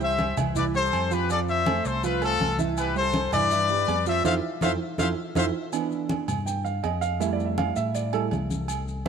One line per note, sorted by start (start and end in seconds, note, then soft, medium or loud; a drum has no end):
0.00 0.32 C2 loud
0.00 0.31 G3 medium
0.00 0.31 G4 medium
0.00 0.31 C5 medium
0.00 0.36 C5 medium
0.00 0.36 E5 loud
0.00 high conga soft
0.00 maracas soft
0.19 high conga loud
0.19 low agogo medium
0.19 maracas soft
0.37 0.89 C2 loud
0.37 0.52 E3 loud
0.37 0.53 E4 medium
0.37 0.53 E5 loud
0.37 high conga soft
0.37 low conga medium
0.37 low agogo loud
0.37 maracas medium
0.55 0.71 E3 medium
0.55 0.71 E4 medium
0.55 0.65 B4 medium
0.55 0.65 D5 medium
0.55 0.71 E5 medium
0.55 high conga soft
0.55 low conga medium
0.55 maracas medium
0.74 1.05 G3 medium
0.74 1.05 G4 medium
0.74 1.10 A4 medium
0.74 1.05 C5 medium
0.74 1.09 C5 loud
0.74 high conga soft
0.74 maracas soft
0.93 1.79 F2 loud
0.93 high conga soft
0.93 low agogo loud
0.93 maracas soft
1.11 1.26 F3 medium
1.11 1.26 F4 medium
1.11 1.31 G4 medium
1.11 1.30 B4 loud
1.11 1.26 F5 medium
1.11 maracas medium
1.29 1.60 F3 medium
1.29 1.60 F4 medium
1.29 1.40 A4 medium
1.29 1.39 D5 loud
1.29 1.60 F5 medium
1.29 high conga soft
1.29 low agogo medium
1.29 maracas medium
1.48 1.83 C5 medium
1.48 1.83 E5 loud
1.48 high conga soft
1.48 maracas soft
1.66 1.97 A3 medium
1.66 1.97 A4 medium
1.66 1.97 C5 medium
1.66 high conga loud
1.66 low agogo loud
1.66 maracas soft
1.85 2.37 C2 medium
1.85 2.04 A4 medium
1.85 2.04 C5 loud
1.85 high conga soft
1.85 maracas medium
2.03 2.19 F3 medium
2.03 2.19 F4 medium
2.03 2.22 F4 medium
2.03 2.21 B4 loud
2.03 2.19 F5 medium
2.03 high conga soft
2.03 low agogo medium
2.03 maracas medium
2.22 2.52 A3 medium
2.22 2.58 F4 medium
2.22 2.52 A4 medium
2.22 2.57 A4 loud
2.22 2.53 C5 medium
2.22 high conga soft
2.22 low agogo loud
2.22 maracas soft
2.40 3.27 C2 loud
2.40 high conga medium
2.40 low agogo medium
2.40 maracas soft
2.59 2.89 E3 medium
2.59 2.89 E4 medium
2.59 2.89 E5 medium
2.59 high conga medium
2.59 maracas medium
2.77 2.95 G4 medium
2.77 2.95 B4 medium
2.77 high conga soft
2.77 low agogo loud
2.77 maracas medium
2.95 3.26 G3 medium
2.95 3.26 G4 medium
2.95 3.31 A4 medium
2.95 3.26 C5 medium
2.95 3.31 C5 loud
2.95 high conga soft
2.95 maracas soft
3.13 high conga loud
3.13 low agogo medium
3.13 maracas soft
3.32 3.84 G2 medium
3.32 3.48 E3 medium
3.32 3.48 E4 medium
3.32 4.03 B4 medium
3.32 4.03 D5 loud
3.32 3.48 E5 loud
3.32 high conga soft
3.32 low conga medium
3.32 low agogo loud
3.32 maracas medium
3.50 3.66 E3 medium
3.50 3.67 E4 medium
3.50 3.67 E5 medium
3.50 high conga soft
3.50 maracas loud
3.69 4.00 G3 medium
3.69 4.00 G4 medium
3.69 4.00 B4 medium
3.69 high conga soft
3.69 maracas soft
3.87 4.22 F2 medium
3.87 high conga soft
3.87 low timbale medium
3.87 low agogo loud
3.87 maracas soft
4.06 4.22 F3 medium
4.06 4.22 F4 loud
4.06 4.24 C5 medium
4.06 4.24 E5 loud
4.06 4.22 F5 medium
4.06 maracas medium
4.24 4.39 F2 loud
4.24 4.37 E4 loud
4.24 4.37 F4 loud
4.24 4.37 A4 loud
4.24 4.34 C5 medium
4.24 4.34 E5 medium
4.24 4.34 F5 loud
4.24 high conga loud
4.24 high timbale medium
4.24 maracas loud
4.61 4.76 F2 medium
4.61 4.74 E4 loud
4.61 4.74 F4 medium
4.61 4.74 A4 loud
4.61 4.71 C5 loud
4.61 4.71 E5 loud
4.61 4.71 F5 medium
4.61 high conga loud
4.61 high timbale loud
4.61 maracas loud
4.98 5.13 F2 medium
4.98 5.11 E4 medium
4.98 5.11 F4 loud
4.98 5.11 A4 loud
4.98 5.08 C5 medium
4.98 5.08 E5 medium
4.98 5.08 F5 medium
4.98 high conga loud
4.98 high timbale loud
4.98 maracas loud
5.35 5.49 F2 loud
5.35 5.48 E4 loud
5.35 5.48 F4 loud
5.35 5.48 A4 medium
5.35 5.45 C5 loud
5.35 5.45 E5 medium
5.35 5.45 F5 medium
5.35 high conga loud
5.35 high timbale loud
5.35 maracas medium
5.72 6.25 E3 medium
5.72 6.25 B3 medium
5.72 6.26 D4 medium
5.72 high conga soft
5.72 low agogo loud
5.72 maracas medium
5.91 high conga soft
5.91 maracas soft
6.09 high conga loud
6.09 low agogo medium
6.09 maracas soft
6.28 6.80 G2 medium
6.28 high conga soft
6.28 low conga medium
6.28 low agogo loud
6.28 maracas medium
6.46 6.64 G5 medium
6.46 high conga soft
6.46 maracas medium
6.65 6.83 F5 medium
6.65 high conga soft
6.65 maracas soft
6.83 7.71 F2 medium
6.83 7.01 D#5 medium
6.83 high conga soft
6.83 low timbale medium
6.83 low agogo loud
6.83 maracas soft
7.01 7.20 F5 loud
7.01 maracas medium
7.20 8.12 G3 medium
7.20 8.12 A3 soft
7.20 8.12 E4 medium
7.20 7.33 E5 medium
7.20 high conga soft
7.20 low agogo medium
7.20 maracas medium
7.33 7.45 D5 medium
7.39 high conga soft
7.39 maracas soft
7.45 7.57 E5 medium
7.58 7.76 F5 loud
7.58 high conga loud
7.58 low agogo loud
7.58 maracas soft
7.76 8.28 A2 medium
7.76 7.94 E5 medium
7.76 high conga soft
7.76 maracas medium
7.95 8.13 D5 medium
7.95 high conga soft
7.95 low agogo medium
7.95 maracas medium
8.13 8.30 G3 soft
8.13 8.30 A3 soft
8.13 8.30 E4 soft
8.13 8.25 A4 medium
8.13 high conga soft
8.13 low agogo loud
8.13 maracas soft
8.31 9.08 C2 medium
8.31 high conga medium
8.31 low timbale medium
8.31 low agogo medium
8.31 maracas soft
8.50 high conga medium
8.50 maracas medium
8.68 high conga soft
8.68 low agogo loud
8.68 maracas medium
8.87 high conga soft
8.87 maracas soft